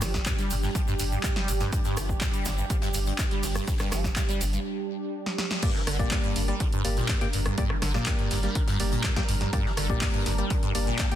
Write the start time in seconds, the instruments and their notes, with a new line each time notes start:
Already playing: analog synth pad G3 D4 G4
0.01 sub bass G1, acid bass F3, cross-stick, snare, closed hi-hat, open hi-hat, shaker
0.14 acid bass F2, kick, snare, shaker
0.26 acid bass G2, kick, snare, clap, closed hi-hat, shaker
0.38 acid bass G3, snare, closed hi-hat, shaker
0.50 sub bass G1, acid bass G2, closed hi-hat, open hi-hat, shaker
0.63 acid bass G2, snare, shaker
0.75 acid bass F3, kick, closed hi-hat, shaker
0.87 acid bass G2, snare, shaker
0.99 sub bass G1, acid bass G2, closed hi-hat, open hi-hat, shaker
1.12 acid bass G2, shaker
1.23 acid bass G2, kick, snare, clap, closed hi-hat, shaker
1.36 acid bass G3, snare, closed hi-hat
1.48 sub bass G1, acid bass G2, closed hi-hat, open hi-hat, shaker
1.60 acid bass G2, snare, closed hi-hat, shaker
1.73 acid bass G2, kick, closed hi-hat, shaker
1.84 acid bass G2, snare, closed hi-hat, shaker
1.97 sub bass G1, acid bass F3, cross-stick, snare, closed hi-hat, open hi-hat, shaker
2.09 acid bass F2, kick, shaker
2.21 acid bass G2, kick, snare, clap, closed hi-hat, open hi-hat, shaker
2.33 acid bass G3, closed hi-hat, shaker
2.45 sub bass G1, acid bass G2, snare, closed hi-hat, open hi-hat, shaker
2.58 acid bass G2, shaker
2.70 acid bass F3, kick, closed hi-hat, shaker
2.82 acid bass G2, snare, closed hi-hat, shaker
2.94 sub bass G1, acid bass G2, open hi-hat, shaker
3.06 acid bass G2, closed hi-hat, shaker
3.18 acid bass G2, kick, snare, clap, closed hi-hat, shaker
3.31 acid bass G3, snare, closed hi-hat
3.43 sub bass G1, acid bass G2, snare, open hi-hat, shaker
3.55 acid bass G2, cross-stick, closed hi-hat, shaker
3.67 acid bass G2, kick, snare, closed hi-hat, open hi-hat, shaker
3.79 acid bass G2, cross-stick, clap, closed hi-hat, shaker
3.92 sub bass G1, acid bass F3, cross-stick, snare, closed hi-hat, open hi-hat, shaker
4.04 acid bass F2, kick, snare, closed hi-hat, shaker
4.16 acid bass G2, kick, snare, clap, closed hi-hat, shaker
4.29 acid bass G3, snare, closed hi-hat, shaker
4.41 sub bass G1, acid bass G2, closed hi-hat, open hi-hat, shaker
4.53 acid bass G2, closed hi-hat, shaker
5.26 snare
5.38 snare
5.51 snare
5.62 acid bass G2, analog synth pad G3 D4 A#4, synth stab A#3 G4 D5, kick, closed hi-hat, crash
5.75 acid bass F3, snare
5.87 sub bass G1, acid bass D3, cross-stick, snare, closed hi-hat, open hi-hat
5.99 acid bass A#2, synth stab A#3 G4 D5, kick, closed hi-hat
6.11 acid bass G2, kick, snare, clap, closed hi-hat, open hi-hat
6.24 acid bass G2, closed hi-hat
6.36 sub bass G1, acid bass G2, closed hi-hat, open hi-hat
6.48 acid bass G3, synth stab A#3 G4 D5, closed hi-hat
6.60 acid bass D3, kick, closed hi-hat
6.72 acid bass G2, closed hi-hat
6.85 sub bass G1, synth stab A#3 G4 D5, closed hi-hat, open hi-hat
6.97 acid bass A#2, snare, closed hi-hat
7.09 acid bass G2, kick, snare, clap, closed hi-hat
7.21 acid bass G2, synth stab A#3 G4 G5, snare, closed hi-hat
7.33 sub bass G1, acid bass G2, closed hi-hat, open hi-hat
7.46 acid bass G2, cross-stick, closed hi-hat
7.58 acid bass G2, synth stab A#3 G4 D5, kick, closed hi-hat
7.70 acid bass F3, cross-stick
7.82 sub bass G1, acid bass D3, cross-stick, snare, closed hi-hat, open hi-hat
7.94 acid bass A#2, synth stab A#3 G4 D5, snare, closed hi-hat
8.06 acid bass G2, kick, snare, clap, closed hi-hat
8.19 acid bass G2, snare, closed hi-hat
8.31 sub bass G1, acid bass G2, snare, closed hi-hat, open hi-hat
8.43 acid bass G3, synth stab A#3 G4 D5, snare, closed hi-hat
8.55 acid bass D3, kick, closed hi-hat
8.68 acid bass G2, snare, closed hi-hat
8.80 sub bass G1, acid bass G2, synth stab A#3 G4 D5, snare, open hi-hat
8.92 acid bass A#2, closed hi-hat
9.04 acid bass G2, kick, snare, clap, closed hi-hat
9.16 acid bass G2, synth stab A#3 G4 G5, kick, snare, closed hi-hat
9.28 sub bass G1, acid bass G2, closed hi-hat, open hi-hat
9.41 acid bass G2, snare, closed hi-hat
9.53 acid bass G2, synth stab A#3 G4 D5, kick, closed hi-hat
9.65 acid bass F3, snare
9.77 sub bass G1, acid bass D3, cross-stick, snare, closed hi-hat, open hi-hat
9.90 acid bass A#2, synth stab A#3 G4 D5, kick
10.01 acid bass G2, kick, snare, clap, closed hi-hat, open hi-hat
10.14 acid bass G2, closed hi-hat
10.26 sub bass G1, acid bass G2, snare, closed hi-hat, open hi-hat
10.38 acid bass G3, synth stab A#3 G4 D5, closed hi-hat
10.50 acid bass D3, kick, closed hi-hat
10.63 acid bass G2, closed hi-hat
10.75 sub bass G1, acid bass G2, synth stab A#3 G4 D5, closed hi-hat, open hi-hat
10.87 acid bass A#2, snare, closed hi-hat
10.99 acid bass G2, kick, snare, clap, closed hi-hat
11.11 acid bass G2, synth stab A#3 G4 G5, snare, closed hi-hat